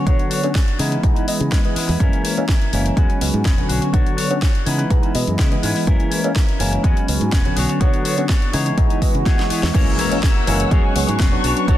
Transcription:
0.06 B1 D3 F#3 B3 D4 F#4 C#5, kick, closed hi-hat
0.19 closed hi-hat
0.30 D4 F#4 C#5, open hi-hat
0.43 D3 F#3 B3 C#4, closed hi-hat
0.54 D4 F#4 C#5, kick, snare, closed hi-hat
0.68 closed hi-hat
0.78 C#3 E3 G#3 B3 C#4 D#4 E4 B4, open hi-hat
0.91 C#4 E4 B4, closed hi-hat
1.03 B1 E3 G#3 B3 D#4, kick, closed hi-hat
1.15 C#4 E4 B4, closed hi-hat
1.27 E3 G#3 B3 D#5, open hi-hat
1.41 C#3, closed hi-hat
1.51 G#3 C#4 E4 B4, kick, snare, closed hi-hat
1.63 E3 G#3 B3 C#4 E4 B4 D#5, closed hi-hat
1.75 G#3 C#4 E4 B4, muted fingered electric bass stroke, open hi-hat
1.88 E2 C#4 E4 B4, open hi-hat
2.00 F#2 E3 G#3 A#3 C#4 E4 A#4, kick, closed hi-hat
2.13 closed hi-hat
2.23 C#4 E4 A#4, open hi-hat
2.37 E3 G#3 A#3 C#4, closed hi-hat
2.48 C#4 E4 A#4, kick, snare, closed hi-hat
2.61 closed hi-hat
2.72 F#1 E3 G#3 A#3 C#4 E4 A#4, open hi-hat
2.85 E4 A#4, closed hi-hat
2.96 E2 F#3 G#3 B3 C#4 F#4 B4, kick, closed hi-hat
3.09 C#4 F#4 B4, closed hi-hat
3.21 C#2 F#3 G#3 B3 C#4, open hi-hat
3.34 G#2, closed hi-hat
3.45 E1 G#3 C#4 F#4 B4, kick, snare, closed hi-hat
3.57 D3 F#3 B3 C#4 F#4 B4, closed hi-hat
3.69 B1 D4 F#4 C#5, open hi-hat
3.81 F#4 C#5, closed hi-hat
3.93 B1 D3 F#3 B3 D4 F#4 C#5, kick, closed hi-hat
4.06 closed hi-hat
4.17 D4 F#4 C#5, open hi-hat
4.30 D3 F#3 B3 C#4, closed hi-hat
4.41 D4 F#4 C#5, kick, snare, closed hi-hat
4.55 closed hi-hat
4.65 C#3 E3 G#3 B3 C#4 D#4 E4 B4, open hi-hat
4.78 C#4 E4 B4, closed hi-hat
4.90 B1 E3 G#3 B3 D#4, kick, closed hi-hat
5.03 C#4 E4 B4, closed hi-hat
5.14 B2 E3 G#3 B3 D#5, open hi-hat
5.27 F#2, closed hi-hat
5.38 C#3 G#3 C#4 E4 B4, kick, snare, closed hi-hat
5.51 E3 G#3 B3 C#4 E4 B4 D#5, closed hi-hat
5.63 G#2 G#3 C#4 E4 B4, open hi-hat
5.75 C#4 E4 B4, open hi-hat
5.87 F#2 E3 G#3 A#3 C#4 E4 A#4, kick, closed hi-hat
6.00 closed hi-hat
6.11 C#4 E4 A#4, open hi-hat
6.24 E3 G#3 A#3 C#4, closed hi-hat
6.36 E4 A#4, kick, snare, closed hi-hat
6.49 closed hi-hat
6.59 F#1 E3 G#3 A#3 C#4 E4 A#4, open hi-hat
6.72 E4 A#4, closed hi-hat
6.83 E2 F#3 G#3 B3 C#4 F#4 B4, kick, closed hi-hat
6.96 C#4 F#4 B4, closed hi-hat
7.08 C#2 F#3 G#3 B3 C#4, open hi-hat
7.21 G#2, closed hi-hat
7.32 E1 G#3 C#4 F#4 B4, kick, snare, closed hi-hat
7.44 D3 F#3 B3 C#4 F#4 B4, closed hi-hat
7.56 B1 B3 D4 F#4 C#5, open hi-hat
7.69 D4 F#4 C#5, closed hi-hat
7.80 B1 D3 F#3 B3 D4 F#4 C#5, kick, closed hi-hat
7.93 closed hi-hat
8.04 B3 D4 F#4 C#5, open hi-hat
8.17 D3 F#3 B3 C#4, closed hi-hat
8.29 B3 D4 F#4 C#5, kick, snare, closed hi-hat
8.42 closed hi-hat
8.52 C#3 E3 G#3 B3 D#4 E4 G#4 C#5, open hi-hat
8.65 E4 G#4 C#5, closed hi-hat
8.77 B1 E3 G#3 B3 D#4, kick, closed hi-hat, swell
8.89 E4 G#4 C#5, closed hi-hat
9.02 E3 G#3 B3 D#5, kick, open hi-hat
9.15 C#3, closed hi-hat
9.25 B3 E4 G#4 C#5, kick, snare, closed hi-hat
9.38 E3 G#3 B3 E4 G#4 C#5 D#5, snare, closed hi-hat
9.49 B3 E4 G#4 C#5, muted fingered electric bass stroke, open hi-hat
9.62 E2 G#4 C#5, snare, open hi-hat
9.74 F#2 E3 G#3 A#3 C#4 E4 F#4 A#4 C#5 F#5 E6, kick, closed hi-hat, crash, impact
9.98 A#3 E4 F#4 C#5, open hi-hat
10.10 E3 G#3 A#3 C#4 E4 F#4 C#5, closed hi-hat
10.22 A#3 E4 F#4 C#5, kick, snare, closed hi-hat
10.46 F#1 E3 G#3 A#3 C#4 E4 F#4 C#5, open hi-hat
10.59 E4 F#4 C#5, closed hi-hat
10.71 E2 F#3 G#3 B3 C#4 F#4 G#4 C#5 C#6, kick, closed hi-hat
10.83 F#4 G#4 C#5
10.95 C#2 F#3 G#3 B3 C#4, open hi-hat
11.07 G#2 F#4 G#4 C#5, closed hi-hat
11.19 E1 B3 F#4 G#4 C#5, kick, snare, closed hi-hat
11.32 F#3 B3 C#4 D4
11.43 B1 B3 D4 F#4 B4 C#5, open hi-hat
11.56 D4 F#4 C#5, closed hi-hat
11.68 B1 F#3 B3 D4 F#4 C#5, kick, closed hi-hat

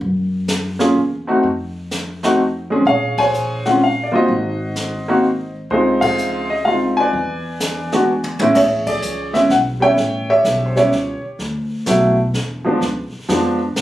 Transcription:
0.01 F#2, brush sweep, kick
0.48 snare, hi-hat pedal
0.79 A#3 C#4 F4 G#4, snare
0.95 E2
1.27 A3 C4 D#4 F#4
1.43 F2, brush sweep, kick
1.91 snare, hi-hat pedal
2.23 A3 C4 D#4 F#4, snare
2.70 G#3 C4 C#4 G#4
2.85 A#1 G#4 C#5 F5, brush sweep, kick
3.17 C5 C#5 G#5, kick, ride
3.34 hi-hat pedal
3.65 G#3 C4 C#4 F4 F#5, snare
3.83 F5
4.04 D5
4.12 G1 A#3 C4 D#4 F4 F#4 C5 D#5
4.28 G#1, brush sweep, kick
4.76 snare, hi-hat pedal
5.08 A#3 C4 D#4 F#4
5.70 C#2 G#3 C4 D#4 F4 G#4 C5, brush sweep, kick
6.01 G#4 C5 F5, kick, ride
6.18 hi-hat pedal
6.50 D#5
6.65 G#3 C4 D#4 F4 F5
6.97 B4 D5 G#5
7.13 E2, brush sweep, kick
7.60 snare, hi-hat pedal
7.92 G#3 B3 D4 F#4, snare
8.24 high tom
8.39 A2 G#3 B3 C#4 E4, high tom
8.55 A1 G#4 C#5 E5, brush sweep, kick, snare, crash
8.87 G#4 D5, kick, crash
9.02 C#2, hi-hat pedal
9.33 G#3 B3 C#4 E4 E5, snare
9.50 B1 F#5, kick, snare
9.80 G3 B3 C#4 E4 C#5 E5 G5
9.97 A1, brush sweep, kick, snare
10.30 G4 C#5 E5
10.44 B1, kick, snare, hi-hat pedal
10.66 C5
10.76 G3 B3 C#4 E4 G4 C#5, snare
10.92 C#2, kick, snare
11.23 muted upright bass stroke
11.39 D2, brush sweep, kick, snare
11.86 B1 F#3 A3 B3 E4, kick, snare, hi-hat pedal
12.34 E2, kick, snare
12.64 F3 G#3 B3 D4
12.81 C#2, brush sweep, kick, snare
13.12 muted upright bass stroke
13.29 F2 F3 G#3 B3 D4, kick, snare
13.76 G#2, kick, snare, hi-hat pedal

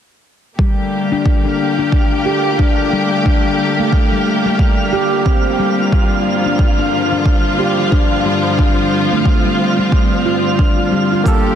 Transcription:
0.59 D3 G3 A3 A#3 F4 G4 F5, kick
1.12 D4
1.26 kick
1.45 D4
1.79 D4
1.92 kick
2.26 G4
2.59 D4, kick
2.93 G3
3.26 D4, kick
3.79 A3
3.92 kick
4.12 G3
4.46 G3
4.59 kick
4.93 G4
5.26 C4, kick
5.60 G3
5.92 G2 F3 G3 F4, kick
6.46 D4
6.59 kick
6.79 D4
7.12 D4
7.26 kick
7.59 G4
7.92 D4, kick
8.26 G3
8.59 C4 D4, kick
9.12 A3
9.25 kick
9.46 G3
9.79 G3
9.92 kick
10.26 F4
10.59 D4, kick
10.92 G3
11.12 F4
11.24 G3 A#3 G4 A4, kick, cabasa
11.28 A4

